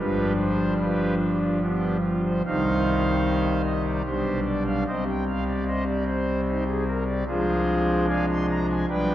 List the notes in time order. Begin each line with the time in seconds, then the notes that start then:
Already playing: G1 G2 F3 G3 D4 F4 G4 B4
0.39 C5
0.81 F4 G4 B4
1.20 G4
1.41 F4
1.62 B3 D4 G4
2.03 F4
2.25 C5
2.45 C2 C3 D#3 G3 D#4 C5 F5
3.66 D#5
3.85 D5
4.05 B1 B2 G3 D4 G4 C5
4.46 D5
4.67 F5
4.87 C2 C3 G3 C4 G4 C5 D#5
5.08 G5
5.27 F5
5.47 D5
5.67 G4 C5 D#5
5.87 D5
6.07 C5
6.47 D#4 G4 C5
6.67 G#4
6.87 A#4
7.07 D5
7.27 C2 C3 F3 G#3 D4 F4 G#4 C5
8.08 D5 F5 G#5
8.29 C6
8.50 A#5
8.69 G#5
8.89 B1 B2 F3 G3 D4 B4 D5 G5